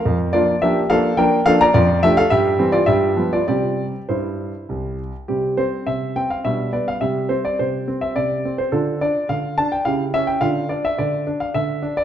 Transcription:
<<
  \new Staff \with { instrumentName = "Grand piano" } { \time 3/4 \key bes \lydian \tempo 4 = 106 << { <bes' f''>8 <f' d''>8 <g' e''>8 <a' f''>8 <bes' g''>8 <a' f''>16 <d'' bes''>16 | \key c \major <f' d''>8 <g' e''>16 <a' f''>16 <g' e''>8. <f' d''>16 <g' e''>8. <f' d''>16 | <g' d''>4 <e' c''>4. r8 | g'8 c''8 e''8 g''16 f''16 e''8 d''16 f''16 |
e''8 c''16 d''16 c''8. e''16 d''8. c''16 | a'8 d''8 f''8 a''16 g''16 f''8 e''16 g''16 | f''8 d''16 e''16 d''8. f''16 e''8. d''16 | } \\ { r2. | r2. | r2. | <g c'>2 <g d'>4 |
<g g'>2. | <d' f'>2 <e' g'>4 | <d' f'>2. | } >> }
  \new Staff \with { instrumentName = "Grand piano" } { \clef bass \time 3/4 \key bes \lydian f,8 <f bes d'>8 <f bes d'>8 <f bes d'>8 <f bes d'>8 <f bes d'>8 | \key c \major f,8 <f a d'>8 g,8 <e g c'>8 g,8 <f g b>8 | <c g c'>4 g,4 c,4 | c8 c'8 c8 c'8 b,8 b8 |
c8 c'8 c8 c'8 c8 c'8 | d8 d'8 d8 d'8 cis8 cis'8 | d8 d'8 d8 d'8 d8 d'8 | }
>>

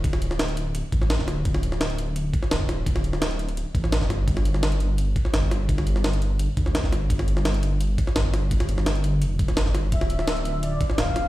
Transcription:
<<
  \new Staff \with { instrumentName = "Soft synth lead" } { \time 4/4 \key d \minor \tempo 4 = 170 r1 | r1 | r1 | r1 |
r1 | r1 | r1 | e''2 d''4 f''4 | }
  \new Staff \with { instrumentName = "Analog synth pad" } { \time 4/4 \key d \minor r1 | r1 | r1 | r1 |
r1 | r1 | r1 | <f c' d' f'>1 | }
  \new Staff \with { instrumentName = "Detuned saw bass" } { \clef bass \time 4/4 \key d \minor d,,8 d,,4. d,,16 r16 a,,8. d,,8. | d,,8 d,,2 r8 d,,4~ | d,,8 d,,4. d,,16 r16 a,,8. f,,16 g,,8 | g,,8 g,,2 r8 g,,4~ |
g,,8 g,,4. g,,16 r16 d,8. g,,8. | g,,8 g,,2 r8 g,,4~ | g,,8 g,,4. f,,8 d,,8 g,,4 | d,,8 d,,2 r8 d,,4 | }
  \new DrumStaff \with { instrumentName = "Drums" } \drummode { \time 4/4 <hh bd>16 sn16 hh16 sn16 <hh sn>16 hh16 hh8 hh8 <hh bd>16 sn16 <hh sn>16 <bd sn>16 <hh sn>8 | <hh bd>16 sn16 hh16 sn16 <hh sn>16 hh16 hh8 hh8 <hh bd>16 sn16 <hh sn>16 bd16 <hh sn>8 | <hh bd>16 sn16 hh16 sn16 <hh sn>16 hh16 hh16 hh16 hh8 <hh bd>16 sn16 <hh sn>16 <bd sn>16 <hh sn>8 | <hh bd>16 sn16 hh16 sn16 <hh sn>16 hh16 hh8 hh8 <hh bd>16 sn16 <hh sn>16 bd16 <hh sn>8 |
<hh bd>16 sn16 hh16 sn16 <hh sn>16 hh16 hh8 hh8 <hh bd>16 sn16 <hh sn>16 <bd sn>16 <hh sn>8 | <hh bd>16 sn16 hh16 sn16 <hh sn>16 hh16 hh8 hh8 <hh bd>16 sn16 <hh sn>16 bd16 <hh sn>8 | <hh bd>16 <hh sn>16 hh16 sn16 <hh sn>16 hh16 hh8 hh8 <hh bd>16 <hh sn>16 <hh sn>16 <bd sn>16 <hh sn>8 | <hh bd>16 sn16 hh16 sn16 <hh sn>16 hh16 hh8 hh8 <hh bd>16 sn16 <hh sn>16 bd16 <hh sn>8 | }
>>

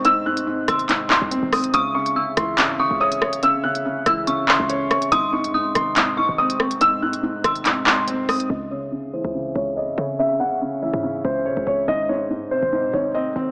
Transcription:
<<
  \new Staff \with { instrumentName = "Synth bell" } { \time 4/4 \key cis \minor \tempo 4 = 142 r4. bis''4. r4 | cis'''4 e'''4. dis'''4. | r4. e'''8 cis'''2 | bis''4 dis'''4. cis'''4. |
r4. bis''4. r4 | r1 | r1 | r1 | }
  \new Staff \with { instrumentName = "Grand piano" } { \time 4/4 \key cis \minor e'''8 fis'''8 r8 e'''4 bis''4 dis'''8 | dis'''8 cis'''8 r8 bis''4 cis'''8 dis'''8 r8 | e'''8 fis'''8 r8 e'''4 bis''4 cis'''8 | dis'''8 cis'''8 r8 bis''4 cis'''8 dis'''8 r8 |
e'''8 fis'''8 r8 e'''4 bis''4 dis'''8 | dis''8 cis''8 r8 bis'4 cis''8 dis''8 r8 | e''8 fis''8 r8 e''4 bis'4 cis''8 | dis''8 cis''8 r8 bis'4 cis''8 dis''8 r8 | }
  \new Staff \with { instrumentName = "Glass harmonica" } { \time 4/4 \key cis \minor <gis bis dis'>1 | <cis' gis' e''>1~ | <cis' gis' e''>1 | <gis bis dis'>1~ |
<gis bis dis'>1 | <cis' gis' e''>1~ | <cis' gis' e''>1 | <gis bis bis'>1 | }
  \new Staff \with { instrumentName = "Felt piano" } { \clef bass \time 4/4 \key cis \minor <gis, bis>8 gis,8 gis,8 bis,8 gis,8 gis,8 bis8 bis8 | cis8 cis8 cis8 e8 cis8 cis8 cis''8 cis''8 | cis8 cis8 cis8 e8 cis8 cis8 cis''8 cis''8 | gis,8 gis,8 gis,8 bis,8 gis,8 gis,8 bis8 bis8 |
gis,8 gis,8 gis,8 bis,8 gis,8 gis,8 bis8 bis8 | cis8 cis8 cis8 e8 cis8 cis8 cis''8 cis''8 | cis8 cis8 cis8 e8 cis8 cis8 cis''8 cis''8 | gis,8 gis,8 gis,8 bis,8 gis,8 gis,8 bis8 bis8 | }
  \new Staff \with { instrumentName = "808-style bass" } { \clef bass \time 4/4 \key cis \minor gis,,16 a,,4~ a,,16 gis,,4~ gis,,16 bis,,8 gis,,8. | cis,4. cis,8 gis,16. cis,16. cis,4~ cis,16~ | cis,4. cis,8. r8 cis,8. r8 | gis,,8. gis,16. gis,,16. gis,,4~ gis,,16 gis,,4~ gis,,16~ |
gis,,16 a,,4~ a,,16 gis,,8 r2 | cis,4.~ cis,16 cis,8. cis,8. gis,16 cis8~ | cis4.~ cis16 gis,8. cis,8 cis16 cis,16 cis,8 | gis,,4 gis,16. gis,,16. gis,,8 bis,16 gis,,4 gis,,8 | }
  \new DrumStaff \with { instrumentName = "Drums" } \drummode { \time 4/4 hh8. hh16 r8 <hh ss>16 hh16 <hc hh>8 hc8 hh8 <hho ss>16 hh16 | hh8. hh16 r8 <hh ss>8 <hc hh>4 r16 hh16 ss16 hh16 | hh8. hh16 r8 <hh ss>8 hh8 hc8 hh8 <hh ss>16 hh16 | hh8. hh16 r8 <hh ss>8 <hc hh>4 r16 hh16 ss16 hh16 |
hh8. hh16 r8 <hh ss>16 hh16 <hc hh>8 hc8 hh8 <hho ss>16 hh16 | r4 r4 r4 r4 | r4 r4 r4 r4 | r4 r4 r4 r4 | }
>>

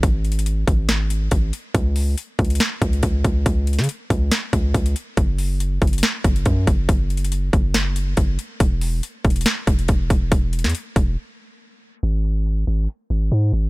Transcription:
<<
  \new Staff \with { instrumentName = "808-style bass" } { \clef bass \time 4/4 \key fis \dorian \tempo 4 = 140 gis,,4. gis,,4. gis,,8 r8 | cis,4 r8 cis,8 r8 cis,8 cis,8 cis,8 | cis,8. cis16 r8 cis,8 r8 cis,8 cis,8 r8 | fis,,4. fis,,8 r8 fis,,8 fis,8 fis,,8 |
fis,,4. fis,,4. fis,,8 r8 | e,,4 r8 e,,8 r8 e,,8 e,,8 e,,8 | e,,8. e,16 r8 e,,8 r2 | gis,,4. gis,,8 r8 gis,,8 gis,8 gis,,8 | }
  \new DrumStaff \with { instrumentName = "Drums" } \drummode { \time 4/4 \tuplet 3/2 { <hh bd>16 r16 r16 hh16 hh16 hh16 } hh8 <hh bd>8 <hh sn>8 hh8 <hh bd>8 hh8 | <hh bd>8 hho8 hh8 <hh bd>32 hh32 hh32 hh32 <hh sn>8 <hh bd>16 hh16 <hh bd>8 <hh bd>8 | <hh bd>8 <hh hho>32 hh32 <hh sn>32 hh32 hh8 <hh bd>8 <hh sn>8 <hh bd>8 <hh bd>16 hh16 hh8 | <hh bd>8 hho8 hh8 <hh bd>32 hh32 hh32 hh32 <hh sn>8 <hh bd>16 hh16 <hh bd>8 <hh bd>8 |
\tuplet 3/2 { <hh bd>16 r16 r16 hh16 hh16 hh16 } hh8 <hh bd>8 <hh sn>8 hh8 <hh bd>8 hh8 | <hh bd>8 hho8 hh8 <hh bd>32 hh32 hh32 hh32 <hh sn>8 <hh bd>16 hh16 <hh bd>8 <hh bd>8 | <hh bd>8 <hh hho>32 hh32 <hh sn>32 hh32 hh8 <hh bd>8 r4 r4 | hh8 hh8 hh8 hh32 hh32 hh32 hh32 hh8 hh16 hh16 hh8 hh8 | }
>>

